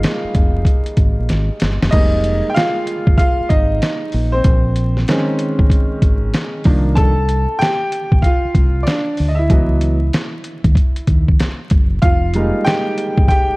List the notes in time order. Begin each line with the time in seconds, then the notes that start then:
Already playing: G3 G#3 A#3 D#4 F4 F5
0.03 snare, closed hi-hat
0.24 muted fingered electric bass stroke
0.35 F1, kick, closed hi-hat
0.65 kick, closed hi-hat
0.86 closed hi-hat
0.97 G#1, kick, closed hi-hat
1.19 A#1
1.29 G#1, snare, closed hi-hat
1.60 G1, snare, closed hi-hat
1.82 F#1, snare
1.91 F1 G3 G#3 A#3 D#4 D#5, kick, closed hi-hat, crash
2.24 closed hi-hat
2.50 G5
2.54 F4 F5, snare, closed hi-hat
2.87 closed hi-hat
3.07 G1, kick
3.18 F4 F5, kick, closed hi-hat
3.40 muted fingered electric bass stroke
3.49 G#1 D#4 D#5, kick, closed hi-hat
3.82 snare, closed hi-hat
4.12 A#1, open hi-hat
4.32 C4 C5
4.44 A#1, kick, closed hi-hat
4.76 closed hi-hat
4.97 snare
5.08 D#3 G#3 C4 C#4, snare, closed hi-hat
5.39 closed hi-hat
5.59 G1, kick
5.70 kick, closed hi-hat
6.02 G#1, kick, closed hi-hat
6.34 snare, closed hi-hat
6.64 C2 D#3 F3 A#3 D4, kick, open hi-hat
6.95 A4 A5, kick, closed hi-hat
7.29 closed hi-hat
7.59 G4 G5, snare, closed hi-hat
7.92 closed hi-hat
8.12 A#1, kick
8.22 F4 F5, kick, closed hi-hat
8.45 muted fingered electric bass stroke
8.55 C2, kick, closed hi-hat
8.83 D5, closed hi-hat
8.87 D4, snare
9.17 D2, open hi-hat
9.28 D#5
9.35 E5
9.39 E4
9.50 C#2 E3 F#3 B3 D#5, kick, closed hi-hat
9.81 closed hi-hat
10.13 snare, closed hi-hat
10.44 closed hi-hat
10.64 D#2, kick, closed hi-hat
10.75 kick, closed hi-hat
10.96 closed hi-hat
11.07 D#2, kick, closed hi-hat
11.28 kick
11.40 snare, closed hi-hat
11.70 F#1, kick, closed hi-hat
12.02 F1 F4 F5, kick, closed hi-hat
12.34 G3 G#3 A#3 D#4, closed hi-hat
12.64 G4 G5, snare, closed hi-hat
12.98 closed hi-hat
13.18 G1, kick
13.28 G4 G5, kick, closed hi-hat
13.50 muted fingered electric bass stroke